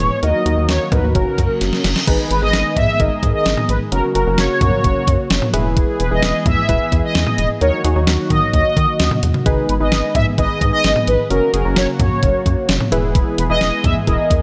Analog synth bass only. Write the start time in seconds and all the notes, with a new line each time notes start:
0.23 D#2
0.46 D#2
0.57 D#2
0.69 D#2
0.92 D#2
1.04 D#2
1.15 F#1
1.38 F#2
1.61 F#1
1.84 F#1
2.07 G#1
2.30 G#1
2.42 G#1
2.54 G#1
2.76 G#2
3.00 G#1
3.23 G#2
3.46 G#1
3.69 A#1
3.92 F#1
4.15 F#1
4.27 F#1
4.38 F#1
4.61 F#2
4.84 F#1
5.07 F#2
5.31 F#1
5.54 E1
6.00 E1
6.11 E1
6.23 E1
6.46 E2
6.69 E1
6.92 E2
7.15 E2
7.38 E1
7.61 D#2
7.84 D#2
7.96 D#2
8.07 D#2
8.30 D#3
8.54 D#2
8.77 D#3
9.00 D#2
9.23 E2
9.46 G#1
9.69 G#1
9.81 G#1
9.92 G#1
10.15 G#2
10.38 G#1
10.61 G#2
10.84 G#1
11.07 A#1
11.30 F#1
11.54 F#1
11.65 F#1
11.77 F#1
11.99 F#2
12.23 F#1
12.46 F#2
12.69 F#1
12.92 E1
13.38 E1
13.50 E1
13.61 E1
13.84 E2
14.07 E1
14.30 E2